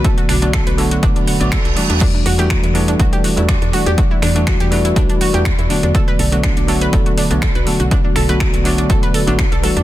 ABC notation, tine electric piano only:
X:1
M:4/4
L:1/16
Q:"Swing 16ths" 1/4=122
K:Em
V:1 name="Tine electric piano"
[D,F,A,B,F]3 [D,F,A,B,F]3 [D,F,A,B,F]4- [D,F,A,B,F] [D,F,A,B,F] z2 [E,G,A,DF]2- | [E,G,A,DF]3 [E,G,A,DF]3 [E,G,A,DF]4- [E,G,A,DF] [E,G,A,DF] z2 [E,G,A,DF]2- | [E,G,A,DF]3 [E,G,A,DF]3 [E,G,A,DF]4- [E,G,A,DF] [E,G,A,DF] z2 [D,F,A,B,F]2- | [D,F,A,B,F]3 [D,F,A,B,F]3 [D,F,A,B,F]4- [D,F,A,B,F] [D,F,A,B,F] z2 [D,F,A,B,F]2- |
[D,F,A,B,F]3 [D,F,A,B,F]3 [D,F,A,B,F]4- [D,F,A,B,F] [D,F,A,B,F] z2 [E,G,A,DF]2 |]